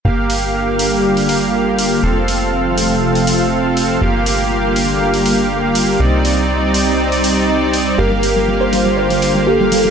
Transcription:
0.05 analog synth bass G1, analog synth pad D3 G3 A#3 F4, supersaw synth A#3 G4 F5
0.30 open hi-hat
0.79 open hi-hat
1.17 open hi-hat
1.29 open hi-hat
1.79 open hi-hat
2.03 analog synth bass F1, analog synth pad C3 F3 A3, supersaw synth C4 A4 F5
2.28 open hi-hat
2.78 open hi-hat
3.15 open hi-hat
3.27 open hi-hat
3.77 open hi-hat
4.02 analog synth bass G1, analog synth pad D3 G3 A#3, supersaw synth A#3 G4 F5
4.26 open hi-hat
4.76 open hi-hat
5.14 open hi-hat
5.26 open hi-hat
5.75 open hi-hat
6.00 analog synth bass C2, supersaw synth C4 D#4 D5, analog synth pad C4 D#4
6.25 open hi-hat
6.74 open hi-hat
7.12 open hi-hat
7.24 open hi-hat
7.73 open hi-hat
7.98 analog synth bass G1, analog synth pad D3 A#3 F4, supersaw synth A#3 G4 F5, synth pluck G4, soft synth lead A#4
8.11 synth pluck G3
8.23 open hi-hat
8.36 synth pluck G3
8.48 synth pluck G3
8.61 synth pluck C5
8.73 synth pluck G3, soft synth lead C5, open hi-hat
8.86 synth pluck G3
8.97 synth pluck C5
9.10 synth pluck G3, open hi-hat
9.22 open hi-hat
9.35 synth pluck G3
9.47 synth pluck G4, soft synth lead A4
9.60 synth pluck G3
9.72 synth pluck G3, open hi-hat
9.85 synth pluck G3

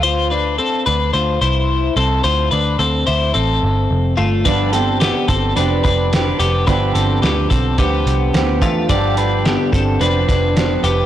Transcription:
Already playing: picked electric bass D2
0.03 clean electric guitar F4 C5
0.30 clean electric guitar D4 B4
0.58 clean electric guitar C4 A4
0.86 picked electric bass D2, clean electric guitar D4 B4
1.13 picked electric bass D2, clean electric guitar F4 C5
1.41 picked electric bass C2, clean electric guitar E4 C5
1.96 picked electric bass C2, clean electric guitar C4 A4
2.24 picked electric bass D2, clean electric guitar F4 C5
2.51 picked electric bass D2, clean electric guitar D4 B4
2.79 picked electric bass D2, clean electric guitar C4 A4
3.07 picked electric bass D2, clean electric guitar E4 C5
3.34 picked electric bass A1, clean electric guitar C4 A4
3.63 picked electric bass G1
3.91 picked electric bass F1
4.17 picked electric bass G1, clean electric guitar A3 F4
4.45 picked electric bass G1, steel-string acoustic guitar G2 D3 F3 B3 D4 G4, clean electric guitar D4 B4, kick, closed hi-hat
4.73 steel-string acoustic guitar F3 B3 D4 G4, clean electric guitar C4 A4, closed hi-hat
5.00 clean electric guitar B3 G4, snare, closed hi-hat
5.28 picked electric bass G1, clean electric guitar C4 A4, kick, closed hi-hat
5.55 picked electric bass F1, steel-string acoustic guitar F3 B3 D4 G4, clean electric guitar D4 B4, closed hi-hat
5.84 picked electric bass F1, clean electric guitar D4 B4, kick, closed hi-hat
6.12 steel-string acoustic guitar F3 B3 D4 G4, snare, closed hi-hat
6.40 picked electric bass F1, clean electric guitar B3 G4, closed hi-hat
6.66 picked electric bass G1, steel-string acoustic guitar G2 D3 F3 B3 D4 G4, clean electric guitar D4 B4, kick, closed hi-hat
6.95 picked electric bass G1, clean electric guitar C4 A4, closed hi-hat
7.22 picked electric bass D2, clean electric guitar B3 G4, snare, closed hi-hat
7.50 picked electric bass B1, clean electric guitar C4 A4, kick, closed hi-hat
7.78 picked electric bass D2, steel-string acoustic guitar F3 B3 D4 G4, clean electric guitar B3 G4, kick, closed hi-hat
8.06 picked electric bass C2, closed hi-hat
8.33 picked electric bass D2, steel-string acoustic guitar F3 B3 D4 G4, snare, closed hi-hat
8.62 picked electric bass E2, clean electric guitar A3 F4, kick, closed hi-hat
8.88 picked electric bass G1, steel-string acoustic guitar G2 D3 F3 B3 D4 G4, clean electric guitar F4 D5, kick, closed hi-hat
9.17 clean electric guitar D4 B4, closed hi-hat
9.45 clean electric guitar B3 G4, snare, closed hi-hat
9.73 picked electric bass G1, clean electric guitar C4 A4, kick, closed hi-hat
10.00 picked electric bass F1, steel-string acoustic guitar F3 B3 D4 G4, clean electric guitar D4 B4, closed hi-hat
10.29 picked electric bass F1, clean electric guitar D4 B4, kick, closed hi-hat
10.55 steel-string acoustic guitar F3 B3 D4 G4, snare, closed hi-hat
10.84 picked electric bass F1, clean electric guitar B3 G4, closed hi-hat

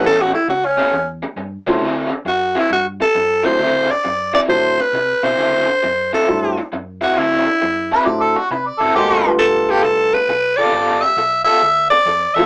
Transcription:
0.03 fingered electric bass A1, overdriven electric guitar A2 G3 B3 C#4, tenor saxophone A4
0.21 tenor saxophone F#4
0.33 tenor saxophone E4, muted overdriven electric guitar stroke
0.48 fingered electric bass C#2, tenor saxophone F#4, muted overdriven electric guitar stroke
0.66 tenor saxophone C#4
0.77 overdriven electric guitar A2 G3 B3 C#4
0.93 fingered electric bass E2, muted overdriven electric guitar stroke
1.23 muted overdriven electric guitar stroke
1.36 fingered electric bass G2, muted overdriven electric guitar stroke
1.66 fingered electric bass C#2, overdriven electric guitar A2 G3 B3 C#4, upright piano F#3 A3 C4 D4 E4
1.81 fingered electric bass D2, overdriven electric guitar D3 F#3 C4 E4
2.11 muted overdriven electric guitar stroke
2.25 fingered electric bass F#2, tenor saxophone F#4, muted overdriven electric guitar stroke
2.55 overdriven electric guitar D3 F#3 C4 E4, tenor saxophone E4
2.70 fingered electric bass G2, tenor saxophone F#4, muted overdriven electric guitar stroke
3.00 tenor saxophone A4, muted overdriven electric guitar stroke
3.15 fingered electric bass F#2, muted overdriven electric guitar stroke
3.43 overdriven electric guitar D3 F#3 C4 E4, upright piano F#3 A3 C4 D4 E4, tenor saxophone C5
3.59 fingered electric bass D2, overdriven electric guitar D3 F#3 C4 E4
3.89 tenor saxophone D5, muted overdriven electric guitar stroke
4.04 fingered electric bass F#2, muted overdriven electric guitar stroke
4.33 overdriven electric guitar D3 F#3 C4 E4, tenor saxophone D5
4.48 fingered electric bass A2, upright piano F#3 A3 C4 D4 E4, tenor saxophone C5, muted overdriven electric guitar stroke
4.80 tenor saxophone B4, muted overdriven electric guitar stroke
4.93 fingered electric bass C3, muted overdriven electric guitar stroke
5.23 fingered electric bass B2, overdriven electric guitar D3 F#3 C4 E4, tenor saxophone C5
5.38 fingered electric bass D2, overdriven electric guitar D3 F#3 C4 E4
5.68 muted overdriven electric guitar stroke
5.83 fingered electric bass F#2, muted overdriven electric guitar stroke
6.13 overdriven electric guitar D3 F#3 C4 E4, tenor saxophone A4
6.28 fingered electric bass G2, upright piano F#3 A3 C4 D4 E4, muted overdriven electric guitar stroke
6.58 muted overdriven electric guitar stroke
6.72 fingered electric bass F#2, muted overdriven electric guitar stroke
7.01 overdriven electric guitar D3 F#3 C4 E4, tenor saxophone F#4
7.16 fingered electric bass D2, overdriven electric guitar D3 F#3 C4 E4, tenor saxophone E4
7.46 muted overdriven electric guitar stroke
7.61 fingered electric bass F#2, muted overdriven electric guitar stroke
7.92 overdriven electric guitar D3 F#3 C4 E4, harmonica B4
8.05 fingered electric bass A2, upright piano F#3 A3 C4 D4 E4, harmonica D5, muted overdriven electric guitar stroke
8.20 harmonica A4
8.36 harmonica F#4, muted overdriven electric guitar stroke
8.51 fingered electric bass C3, harmonica B4, muted overdriven electric guitar stroke
8.66 harmonica D5
8.80 fingered electric bass F#1, overdriven electric guitar D3 F#3 C4 E4, harmonica A4
8.95 fingered electric bass G1, overdriven electric guitar G3 B3 F4 A4, upright piano G#3 A#3 C4 D#4 F#4, harmonica G4
9.25 upright piano G3 A3 B3 D4 F4, muted overdriven electric guitar stroke
9.39 fingered electric bass B1, tenor saxophone A4, muted overdriven electric guitar stroke
9.69 overdriven electric guitar G3 B3 F4 A4, tenor saxophone G4
9.83 fingered electric bass C2, tenor saxophone A4, muted overdriven electric guitar stroke
10.14 tenor saxophone B4, muted overdriven electric guitar stroke
10.28 fingered electric bass B1, muted overdriven electric guitar stroke
10.57 overdriven electric guitar G3 B3 F4 A4, tenor saxophone D5
10.72 fingered electric bass G1, overdriven electric guitar G3 B3 F4 A4
11.01 tenor saxophone E5, muted overdriven electric guitar stroke
11.16 fingered electric bass B1, muted overdriven electric guitar stroke
11.45 overdriven electric guitar G3 B3 F4 A4, tenor saxophone E5
11.62 fingered electric bass D2, muted overdriven electric guitar stroke
11.90 tenor saxophone D5, muted overdriven electric guitar stroke
12.05 fingered electric bass F2, muted overdriven electric guitar stroke
12.35 fingered electric bass E2, upright piano F#3 A3 C4 D4 E4, overdriven electric guitar G3 B3 F4 A4, tenor saxophone E5

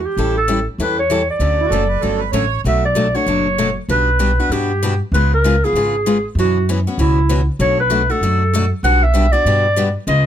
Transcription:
0.06 clarinet G4
0.17 upright bass A1, steel-string acoustic guitar E3 G3 C#4 E4 A4
0.38 clarinet A4
0.48 steel-string acoustic guitar E3 G3 C#4 E4 A4
0.78 upright bass E2, steel-string acoustic guitar E3 G3 C#4 E4 A4, clarinet B4
0.99 clarinet C#5
1.10 steel-string acoustic guitar E3 G3 C#4 E4 A4
1.31 clarinet D5
1.39 upright bass D2, steel-string acoustic guitar D3 F#3 A3 C#4 F#4
1.61 accordion E4 F#4
1.70 upright bass F#1, steel-string acoustic guitar D3 F#3 A3 C#4 F#4, accordion A4
1.88 accordion B4
2.01 upright bass G1, steel-string acoustic guitar D3 F#3 A3 C#4 F#4, accordion A4
2.18 accordion B4
2.32 upright bass A1, steel-string acoustic guitar D3 F#3 A3 C#4 F#4, accordion C#5
2.64 upright bass B1, steel-string acoustic guitar B2 F#3 A3 D4 F#4, clarinet E5
2.86 clarinet D5
2.95 steel-string acoustic guitar B2 F#3 A3 D4 F#4
3.15 steel-string acoustic guitar A3 D4 F#4, clarinet C#5
3.26 upright bass F#1, steel-string acoustic guitar B2 F#3 A3 D4 F#4
3.58 steel-string acoustic guitar B2 F#3 A3 D4 F#4
3.89 upright bass B1, steel-string acoustic guitar B2 G3 B3 D4 F#4, clarinet B4
4.19 steel-string acoustic guitar B2 G3 B3 D4 F#4
4.40 steel-string acoustic guitar B3 D4 F#4
4.50 upright bass G2, steel-string acoustic guitar B2 G3 B3 D4 F#4, clarinet G4
4.83 steel-string acoustic guitar B2 G3 B3 D4 F#4
5.12 upright bass C#2, steel-string acoustic guitar C#3 G#3 B3 F4 G#4, clarinet B4
5.34 clarinet A#4
5.44 steel-string acoustic guitar C#3 G#3 B3 F4 G#4
5.64 steel-string acoustic guitar B3 F4 G#4, clarinet G#4
5.73 upright bass G#1, steel-string acoustic guitar C#3 G#3 B3 F4 G#4
6.06 steel-string acoustic guitar C#3 G#3 B3 F4 G#4
6.35 upright bass F#2, steel-string acoustic guitar B2 E3 C#4
6.39 steel-string acoustic guitar B3 F#4, clarinet F#4
6.69 steel-string acoustic guitar B2 E3 B3 C#4 F#4
6.87 steel-string acoustic guitar B3 C#4 F#4
6.98 upright bass C#2, steel-string acoustic guitar B2 E3 B3 C#4 F#4, clarinet E4
7.29 steel-string acoustic guitar B2 E3 B3 C#4 F#4
7.59 upright bass B1, steel-string acoustic guitar B2 F#3 A3 D4 F#4, clarinet C#5
7.80 clarinet B4
7.90 steel-string acoustic guitar B2 F#3 A3 D4 F#4
8.10 steel-string acoustic guitar A3 D4 F#4, clarinet A4
8.21 upright bass F#2, steel-string acoustic guitar B2 F#3 A3 D4 F#4
8.53 steel-string acoustic guitar B2 F#3 A3 D4 F#4
8.83 upright bass B1, steel-string acoustic guitar B2 G3 B3 D4 F#4, clarinet F#5
9.03 clarinet E5
9.14 steel-string acoustic guitar B2 G3 B3 D4 F#4
9.32 steel-string acoustic guitar B3 D4 F#4, clarinet D5
9.45 upright bass G2, steel-string acoustic guitar B2 G3 B3 D4 F#4
9.76 steel-string acoustic guitar B2 G3 B3 D4 F#4
10.07 upright bass C#2, steel-string acoustic guitar C#3 G#3 B3 F4 G#4, clarinet D#5

